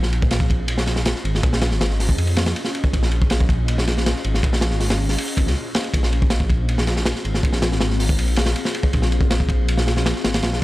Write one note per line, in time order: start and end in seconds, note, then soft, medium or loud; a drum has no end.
0.00 1.14 A#1 medium
0.00 snare soft
0.13 ride medium
0.22 kick loud
0.31 snare loud
0.31 ride loud
0.40 kick loud
0.50 kick medium
0.50 ride medium
0.68 ride loud
0.78 snare medium
0.87 snare medium
0.87 ride medium
0.96 snare soft
1.05 snare loud
1.05 ride medium
1.15 snare soft
1.24 1.41 G#1 medium
1.24 ride medium
1.35 snare soft
1.43 1.73 A#1 medium
1.43 kick loud
1.43 ride medium
1.53 snare medium
1.61 snare loud
1.61 ride medium
1.71 2.17 G#1 medium
1.71 snare soft
1.81 snare loud
1.81 ride medium
1.90 snare soft
2.00 snare soft
2.00 open hi-hat medium
2.09 kick medium
2.18 2.54 F2 medium
2.18 ride medium
2.27 ride soft
2.36 snare loud
2.36 ride medium
2.46 snare loud
2.46 ride medium
2.56 ride medium
2.65 snare soft
2.75 ride medium
2.84 kick loud
2.93 4.14 A#1 loud
2.93 kick loud
2.93 ride medium
3.03 snare medium
3.11 ride medium
3.22 kick loud
3.30 snare loud
3.30 ride loud
3.40 kick loud
3.49 kick loud
3.49 ride medium
3.68 ride medium
3.78 snare medium
3.87 snare medium
3.87 ride medium
3.98 snare soft
4.06 snare loud
4.06 ride loud
4.16 snare soft
4.24 4.41 G#1 loud
4.24 ride medium
4.34 snare soft
4.43 4.73 A#1 loud
4.43 kick loud
4.43 ride medium
4.53 snare medium
4.61 snare loud
4.61 ride medium
4.71 5.17 G#1 medium
4.71 snare soft
4.80 snare soft
4.80 open hi-hat medium
4.90 snare loud
4.90 ride medium
5.09 snare soft
5.09 open hi-hat medium
5.18 ride medium
5.28 ride medium
5.37 5.48 G#1 loud
5.37 kick loud
5.37 ride medium
5.47 5.55 C#2 medium
5.47 snare soft
5.75 snare loud
5.75 ride medium
5.84 ride medium
5.94 7.14 A#1 loud
5.94 kick loud
5.94 ride medium
6.03 snare soft
6.13 ride medium
6.22 kick loud
6.30 snare loud
6.30 ride medium
6.40 kick loud
6.50 kick loud
6.50 ride medium
6.69 ride medium
6.78 snare medium
6.87 snare soft
6.87 ride medium
6.97 snare soft
7.06 snare loud
7.06 ride medium
7.16 snare soft
7.25 7.41 G#1 medium
7.25 ride medium
7.34 snare soft
7.43 7.73 A#1 loud
7.43 kick loud
7.43 ride medium
7.53 snare medium
7.62 snare loud
7.62 ride medium
7.72 8.17 G#1 medium
7.72 snare medium
7.81 snare loud
7.81 ride medium
7.90 snare soft
8.00 snare soft
8.00 open hi-hat medium
8.09 kick medium
8.18 8.54 A#1 medium
8.18 ride medium
8.28 ride soft
8.36 snare loud
8.36 ride medium
8.46 snare loud
8.46 ride medium
8.56 ride medium
8.65 snare medium
8.75 ride medium
8.83 kick loud
8.93 10.14 A#1 loud
8.93 kick loud
8.93 ride medium
9.02 snare medium
9.12 ride medium
9.21 kick medium
9.31 snare loud
9.31 ride medium
9.40 kick medium
9.49 kick loud
9.49 ride medium
9.68 ride medium
9.78 snare medium
9.87 snare medium
9.87 ride medium
9.97 snare medium
10.06 snare loud
10.06 ride medium
10.16 snare soft
10.24 10.41 G#1 loud
10.24 snare loud
10.24 ride medium
10.34 snare loud
10.34 ride medium
10.43 10.64 A#1 medium
10.43 snare loud
10.43 ride medium
10.53 snare medium